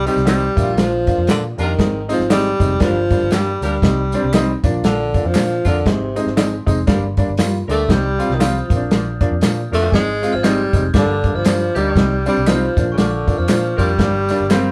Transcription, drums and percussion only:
0.07 closed hi-hat, tambourine
0.17 snare
0.27 snare, clap, closed hi-hat, tambourine
0.57 kick, closed hi-hat, tambourine
0.78 snare, closed hi-hat, tambourine
1.07 kick, closed hi-hat, tambourine
1.27 snare, clap, closed hi-hat, tambourine
1.58 closed hi-hat, tambourine
1.79 kick, snare, closed hi-hat, tambourine
2.09 closed hi-hat, tambourine
2.20 snare
2.30 snare, clap, closed hi-hat, tambourine
2.60 kick, closed hi-hat, tambourine
2.80 kick, snare, closed hi-hat, tambourine
3.11 kick, closed hi-hat, tambourine
3.31 snare, clap, closed hi-hat, tambourine
3.62 closed hi-hat, tambourine
3.82 kick, snare, closed hi-hat, tambourine
4.12 closed hi-hat, tambourine
4.33 snare, clap, closed hi-hat, tambourine
4.64 kick, closed hi-hat, tambourine
4.84 snare, closed hi-hat, tambourine
5.14 kick, closed hi-hat, tambourine
5.34 snare, clap, closed hi-hat, tambourine
5.65 kick, closed hi-hat, tambourine
5.86 kick, snare, closed hi-hat
6.16 closed hi-hat, tambourine
6.27 snare
6.37 snare, clap, closed hi-hat, tambourine
6.67 kick, closed hi-hat, tambourine
6.87 kick, snare, closed hi-hat, tambourine
7.17 kick, closed hi-hat, tambourine
7.37 snare, clap, closed hi-hat, tambourine
7.69 closed hi-hat, tambourine
7.89 kick, snare, closed hi-hat, tambourine
8.20 closed hi-hat, tambourine
8.31 snare
8.41 snare, clap, closed hi-hat, tambourine
8.70 kick, closed hi-hat, tambourine
8.91 snare, closed hi-hat, tambourine
9.21 kick, closed hi-hat
9.41 snare, clap, closed hi-hat, tambourine
9.73 closed hi-hat, tambourine
9.92 kick, snare, closed hi-hat, tambourine
10.23 closed hi-hat, tambourine
10.44 snare, clap, closed hi-hat, tambourine
10.73 kick, closed hi-hat, tambourine
10.94 kick, snare, closed hi-hat, tambourine
11.24 kick, closed hi-hat
11.45 snare, clap, closed hi-hat, tambourine
11.76 closed hi-hat, tambourine
11.96 kick, snare, closed hi-hat, tambourine
12.26 closed hi-hat, tambourine
12.47 snare, clap, closed hi-hat, tambourine
12.77 kick, closed hi-hat, tambourine
12.98 snare, closed hi-hat, tambourine
13.28 kick, closed hi-hat, tambourine
13.48 snare, clap, closed hi-hat, tambourine
13.78 kick, closed hi-hat, tambourine
13.99 kick, snare, closed hi-hat
14.29 closed hi-hat, tambourine
14.50 snare, clap, closed hi-hat, tambourine

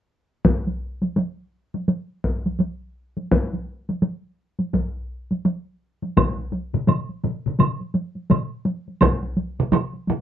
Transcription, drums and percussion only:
0.45 taiko, taiko high
0.67 taiko high
1.02 taiko high
1.16 taiko high
1.74 taiko high
1.88 taiko high
2.24 taiko
2.46 taiko high
2.60 taiko high
3.17 taiko high
3.31 taiko, taiko high
3.53 taiko high
3.89 taiko high
4.02 taiko high
4.59 taiko high
4.74 taiko, taiko high
5.31 taiko high
5.45 taiko high
6.02 taiko high
6.17 taiko, taiko low-mid, taiko high, high woodblock
6.38 taiko high
6.52 taiko high
6.73 taiko low-mid, taiko high
6.87 taiko low-mid, taiko high, high woodblock
7.09 taiko high
7.24 taiko low-mid, taiko high
7.46 taiko low-mid, taiko high
7.59 taiko low-mid, taiko high, high woodblock
7.80 taiko high
7.94 taiko high
8.15 taiko high
8.30 taiko low-mid, taiko high, high woodblock
8.65 taiko high
8.88 taiko high
9.01 taiko, taiko mid, taiko high, high woodblock
9.23 taiko high
9.37 taiko high
9.59 taiko mid, taiko high
9.72 taiko mid, taiko high, high woodblock
9.93 taiko high
10.07 taiko mid, taiko high

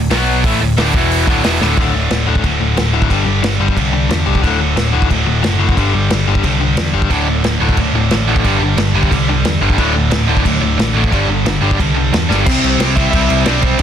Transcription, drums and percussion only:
0.11 snare, open hi-hat
0.44 kick, open hi-hat
0.78 snare, open hi-hat
0.94 kick
1.11 open hi-hat
1.27 kick
1.44 snare, open hi-hat
1.61 snare
1.77 kick, crash
2.11 snare, crash
2.35 kick
2.44 kick, crash
2.77 snare, crash
3.02 kick
3.10 kick, crash
3.44 snare, crash
3.68 kick
3.77 kick, crash
4.10 snare, crash
4.35 kick
4.43 kick, crash
4.77 snare, crash
5.02 kick
5.10 kick, crash
5.44 snare, crash
5.69 kick
5.77 kick, crash
6.10 snare, crash
6.35 kick
6.44 kick, crash
6.77 snare, crash
7.02 kick
7.10 kick, crash
7.44 snare, crash
7.69 kick
7.77 kick, crash
8.11 snare, crash
8.36 kick
8.44 kick, crash
8.78 snare, crash
9.03 kick
9.11 kick, crash
9.45 snare, crash
9.70 kick
9.78 kick, crash
10.11 snare, crash
10.37 kick
10.45 kick, crash
10.79 snare, crash
11.04 kick
11.12 kick, crash
11.46 snare, crash
11.71 kick
11.80 kick, crash
12.14 snare, crash
12.31 snare
12.46 kick, crash
12.64 crash
12.80 snare, crash
12.97 kick, crash
13.13 kick, crash
13.30 crash
13.46 snare, crash
13.62 kick, crash
13.79 crash

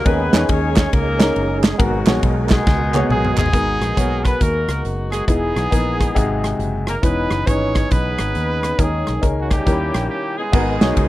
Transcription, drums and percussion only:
0.06 kick, ride
0.33 snare, clap, ride
0.49 kick, ride
0.76 kick, snare, clap, ride
0.93 kick, ride
1.20 snare, clap, ride
1.36 ride
1.64 snare, clap, ride
1.80 kick, ride
2.07 snare, clap, ride
2.23 kick, ride
2.49 kick, snare, clap, ride
2.67 kick, snare
2.94 clap, high tom
3.10 mid tom
3.25 mid tom
3.38 clap, floor tom
3.46 floor tom
3.53 kick, closed hi-hat
3.82 cross-stick, closed hi-hat
3.97 kick, closed hi-hat
4.25 kick, cross-stick, closed hi-hat
4.41 kick, closed hi-hat
4.68 cross-stick, closed hi-hat
4.85 closed hi-hat
5.12 cross-stick, closed hi-hat
5.28 kick, closed hi-hat
5.56 cross-stick, closed hi-hat
5.72 kick, closed hi-hat
6.00 kick, cross-stick, closed hi-hat
6.16 kick, closed hi-hat
6.44 cross-stick, closed hi-hat
6.60 closed hi-hat
6.87 cross-stick, closed hi-hat
7.03 kick, closed hi-hat
7.31 cross-stick, closed hi-hat
7.47 kick, closed hi-hat
7.75 kick, cross-stick, closed hi-hat
7.91 kick, closed hi-hat
8.18 cross-stick, closed hi-hat
8.35 closed hi-hat
8.63 cross-stick, closed hi-hat
8.79 kick, closed hi-hat
9.07 cross-stick, closed hi-hat
9.23 kick, closed hi-hat
9.51 kick, cross-stick, closed hi-hat
9.67 kick, closed hi-hat
9.94 cross-stick, closed hi-hat
10.53 kick, crash
10.81 snare, ride
10.97 kick, ride

